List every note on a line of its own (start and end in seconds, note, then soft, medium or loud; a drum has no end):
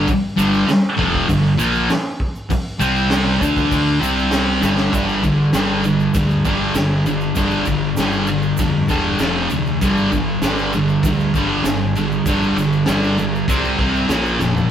0.08 kick loud
0.08 open hi-hat medium
0.08 shaker medium
0.36 0.66 G1 medium
0.36 0.66 G2 medium
0.36 0.67 D3 loud
0.36 0.67 G3 loud
0.36 shaker medium
0.54 shaker soft
0.67 muted distorted electric guitar stroke medium
0.67 muted fingered electric bass stroke soft
0.67 snare loud
0.67 open hi-hat medium
0.67 shaker medium
0.97 1.27 F1 medium
0.97 1.27 F2 loud
0.97 1.28 C3 loud
0.97 1.28 F3 loud
0.97 kick medium
1.14 kick medium
1.28 1.57 G1 medium
1.28 1.53 G2 medium
1.28 1.53 D3 medium
1.28 kick loud
1.28 open hi-hat medium
1.28 shaker medium
1.58 1.87 A#1 loud
1.58 1.88 A#2 medium
1.58 1.88 F3 loud
1.58 1.89 A#3 loud
1.58 shaker medium
1.75 shaker soft
1.90 snare loud
1.90 open hi-hat medium
1.90 shaker medium
2.20 kick medium
2.35 shaker soft
2.50 muted distorted electric guitar stroke medium
2.50 muted fingered electric bass stroke soft
2.50 kick loud
2.50 open hi-hat medium
2.50 shaker medium
2.79 3.37 C2 medium
2.79 3.41 C3 loud
2.79 3.41 G3 loud
2.79 3.42 C4 loud
2.79 shaker medium
2.96 shaker soft
3.10 snare loud
3.10 open hi-hat medium
3.10 shaker medium
3.41 3.98 D2 medium
3.41 4.00 D3 medium
3.41 4.00 A3 loud
3.41 4.01 D4 loud
3.41 kick medium
3.41 shaker medium
3.57 kick medium
3.57 shaker soft
3.71 kick loud
3.71 open hi-hat medium
3.71 shaker medium
4.00 4.58 C2 loud
4.00 4.61 C3 medium
4.00 4.61 G3 medium
4.00 4.61 C4 loud
4.00 shaker loud
4.18 shaker soft
4.31 snare loud
4.31 open hi-hat medium
4.31 shaker medium
4.61 4.91 G1 loud
4.61 4.91 G2 loud
4.61 4.92 D3 loud
4.61 4.92 G3 loud
4.61 snare medium
4.61 shaker loud
4.77 snare medium
4.77 shaker soft
4.92 5.47 G1 medium
4.92 5.21 G2 medium
4.92 5.22 D3 medium
4.92 5.22 G3 loud
4.92 kick loud
4.92 ride medium
4.92 shaker medium
5.09 shaker soft
5.23 5.50 G2 medium
5.23 5.51 D3 medium
5.23 kick medium
5.23 ride medium
5.23 shaker medium
5.53 6.08 G1 medium
5.53 5.82 G2 medium
5.53 5.83 D3 loud
5.53 5.83 G3 loud
5.53 snare loud
5.53 ride medium
5.53 shaker loud
5.84 6.12 G2 medium
5.84 6.12 D3 medium
5.84 ride medium
5.84 shaker medium
6.00 shaker soft
6.14 6.42 D2 loud
6.14 6.42 G2 medium
6.14 6.42 D3 medium
6.14 kick loud
6.14 ride medium
6.14 shaker medium
6.30 shaker soft
6.45 6.72 G1 medium
6.45 6.74 G2 medium
6.45 6.74 D3 medium
6.45 6.74 G3 loud
6.45 kick medium
6.45 ride medium
6.45 shaker medium
6.74 7.29 G1 medium
6.74 7.03 G2 medium
6.74 7.03 D3 medium
6.74 snare loud
6.74 ride medium
6.74 shaker loud
7.06 7.34 G2 medium
7.06 7.34 D3 medium
7.06 ride medium
7.06 shaker medium
7.21 shaker soft
7.35 7.64 G1 loud
7.35 7.65 G2 medium
7.35 7.65 D3 loud
7.35 7.65 G3 loud
7.35 kick loud
7.35 ride medium
7.35 shaker loud
7.51 shaker soft
7.66 7.94 G1 medium
7.66 7.95 G2 medium
7.66 7.95 D3 medium
7.66 kick medium
7.66 ride medium
7.66 shaker medium
7.97 8.52 G1 medium
7.97 8.27 G2 loud
7.97 8.27 D3 loud
7.97 8.28 G3 loud
7.97 snare loud
7.97 ride loud
7.97 shaker loud
8.12 shaker soft
8.27 8.56 G2 medium
8.27 8.56 D3 medium
8.27 ride medium
8.27 shaker medium
8.42 shaker soft
8.57 8.86 F2 loud
8.57 8.86 G2 medium
8.57 8.87 D3 medium
8.57 kick loud
8.57 ride loud
8.57 shaker loud
8.89 9.17 E1 medium
8.89 9.18 G2 medium
8.89 9.18 D3 loud
8.89 9.19 G3 loud
8.89 kick medium
8.89 ride medium
8.89 shaker medium
9.19 9.47 F1 medium
9.19 9.49 F2 loud
9.19 9.49 C3 loud
9.19 9.49 F3 loud
9.19 snare loud
9.19 ride medium
9.19 shaker medium
9.50 9.78 D2 medium
9.50 9.78 F2 medium
9.50 9.78 C3 medium
9.50 ride medium
9.50 shaker medium
9.66 shaker soft
9.81 10.36 G1 medium
9.81 10.10 G2 medium
9.81 10.11 D3 medium
9.81 10.11 G3 medium
9.81 kick loud
9.81 ride medium
9.81 shaker medium
9.97 shaker soft
10.12 10.39 G2 medium
10.12 10.40 D3 medium
10.12 kick medium
10.12 ride medium
10.12 shaker medium
10.42 10.97 G1 medium
10.42 10.71 G2 medium
10.42 10.71 D3 medium
10.42 10.72 G3 medium
10.42 snare loud
10.42 ride medium
10.42 shaker medium
10.58 shaker soft
10.72 11.01 G2 medium
10.72 11.02 D3 medium
10.72 ride medium
10.72 shaker medium
10.88 shaker soft
11.03 11.31 D2 medium
11.03 11.32 G2 medium
11.03 11.32 D3 medium
11.03 kick loud
11.03 ride medium
11.03 shaker loud
11.20 shaker soft
11.34 11.61 G1 medium
11.34 11.63 G2 medium
11.34 11.64 D3 loud
11.34 11.64 G3 loud
11.34 kick medium
11.34 ride medium
11.34 shaker medium
11.64 12.19 G1 medium
11.64 11.93 G2 medium
11.64 11.93 D3 medium
11.64 snare loud
11.64 ride medium
11.64 shaker loud
11.95 12.23 G2 medium
11.95 12.23 D3 medium
11.95 ride medium
11.95 shaker medium
12.11 shaker soft
12.26 12.53 G1 loud
12.26 12.55 G2 medium
12.26 12.55 D3 loud
12.26 12.56 G3 loud
12.26 kick loud
12.26 ride medium
12.26 shaker medium
12.42 shaker soft
12.56 12.83 G1 medium
12.56 12.84 G2 medium
12.56 12.84 D3 medium
12.56 ride medium
12.56 shaker medium
12.73 shaker soft
12.86 13.42 G1 medium
12.86 13.16 G2 medium
12.86 13.16 D3 loud
12.86 13.16 G3 loud
12.86 snare loud
12.86 ride loud
12.86 shaker medium
13.04 shaker soft
13.18 13.46 G2 medium
13.18 13.46 D3 medium
13.18 ride medium
13.18 shaker medium
13.35 shaker soft
13.48 13.75 C2 medium
13.48 13.77 C3 medium
13.48 13.78 G3 medium
13.48 13.78 C4 medium
13.48 kick loud
13.48 ride loud
13.48 shaker medium
13.64 shaker soft
13.78 14.06 C2 medium
13.78 14.08 C3 medium
13.78 14.08 G3 medium
13.78 14.08 C4 loud
13.78 kick medium
13.78 ride medium
13.96 shaker soft
14.09 14.37 A#1 medium
14.09 14.39 A#2 medium
14.09 14.39 F3 medium
14.09 14.39 A#3 loud
14.09 snare loud
14.09 ride loud
14.09 shaker medium
14.25 shaker soft
14.39 14.67 F1 medium
14.39 14.68 A#2 medium
14.39 14.68 F3 medium
14.39 snare medium
14.39 shaker medium
14.55 floor tom medium
14.55 shaker soft